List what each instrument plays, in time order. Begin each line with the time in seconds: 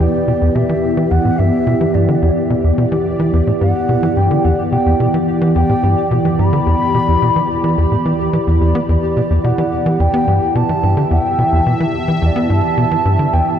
Already playing: analog synth pad E3 B3 G4 G5
0.00 analog synth bass E2, synth texture G4, flute D5
0.28 analog synth bass B2
0.42 analog synth bass E2
0.55 analog synth bass B2, flute E5
0.69 analog synth bass E3
0.97 analog synth bass E3
1.11 analog synth bass E2, flute F#5
1.25 analog synth bass A2
1.38 analog synth bass G2, flute E5
1.67 analog synth bass B2
1.73 analog synth pad D5
1.81 analog synth bass E3
1.94 analog synth bass G2, flute D5
2.08 analog synth bass D3, flute E5
2.15 flute D5
2.22 analog synth bass E2
2.28 flute C#5 D5
2.50 analog synth bass B2
2.64 analog synth bass E2
2.78 analog synth bass B2
2.92 analog synth bass E3
3.19 analog synth bass E3
3.33 analog synth bass E2
3.47 analog synth bass A2
3.61 analog synth bass G2, flute F#5
3.89 analog synth bass B2
4.03 analog synth bass E3
4.16 analog synth bass G2, flute G5
4.31 analog synth bass D3
4.44 analog synth bass E2, flute F#5
4.72 analog synth bass B2, flute G5
4.86 analog synth bass E2
5.00 analog synth bass B2
5.14 analog synth bass E3
5.41 analog synth bass E3
5.55 analog synth bass E2, flute G5
5.69 analog synth bass A2
5.83 analog synth bass G2
6.11 analog synth bass B2
6.25 analog synth bass E3
6.39 analog synth bass G2, flute B5
6.53 analog synth bass D3
6.67 analog synth bass E2
6.94 analog synth bass B2
7.08 analog synth bass E2
7.22 analog synth bass B2
7.36 analog synth bass E3
7.64 analog synth bass E3
7.78 analog synth bass E2
7.92 analog synth bass A2
8.06 analog synth bass E3
8.33 analog synth bass E3
8.47 analog synth bass E2
8.61 analog synth bass E2
8.75 analog synth bass B3
8.89 analog synth bass E2, flute D5
9.17 analog synth bass B2
9.30 analog synth bass E2
9.44 analog synth bass B2, flute F#5
9.58 analog synth bass E3
9.86 analog synth bass E3
10.00 analog synth bass E2, flute G5
10.14 analog synth bass B3
10.28 analog synth bass G2
10.55 analog synth bass B2, flute A5
10.61 analog synth pad E5
10.69 analog synth bass E3
10.83 analog synth bass G2
10.97 analog synth bass D3
11.11 analog synth bass E2, flute G5
11.39 analog synth bass B2
11.52 analog synth bass E2
11.66 analog synth bass B2
11.80 analog synth bass E3
11.94 flute E5
12.08 analog synth bass E3
12.22 analog synth bass E2, flute E5
12.26 flute D5
12.36 analog synth bass B3
12.50 analog synth bass G2, flute A5
12.78 analog synth bass B2
12.91 analog synth bass E3
13.05 analog synth bass G2
13.19 analog synth bass D3
13.33 analog synth bass E2, flute G5
13.50 flute A5
13.55 flute G5